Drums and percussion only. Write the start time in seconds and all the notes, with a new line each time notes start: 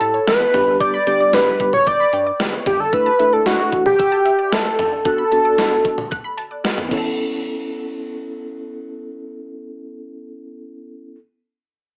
0.01 closed hi-hat
0.27 snare, closed hi-hat
0.54 closed hi-hat, mid tom
0.80 kick, closed hi-hat
1.07 closed hi-hat
1.33 snare, closed hi-hat
1.60 kick, closed hi-hat
1.73 mid tom
1.87 kick, closed hi-hat
2.13 closed hi-hat
2.40 snare, closed hi-hat
2.66 kick, closed hi-hat, mid tom
2.93 kick, closed hi-hat
3.20 closed hi-hat
3.46 snare, closed hi-hat
3.72 kick, closed hi-hat
3.86 mid tom
3.99 kick, closed hi-hat
4.26 closed hi-hat
4.52 snare, closed hi-hat
4.79 closed hi-hat, mid tom
5.05 kick, closed hi-hat
5.32 closed hi-hat
5.58 snare, closed hi-hat
5.85 kick, closed hi-hat
5.98 mid tom
6.12 kick, closed hi-hat
6.38 closed hi-hat
6.65 snare, closed hi-hat
6.78 mid tom
6.91 kick, crash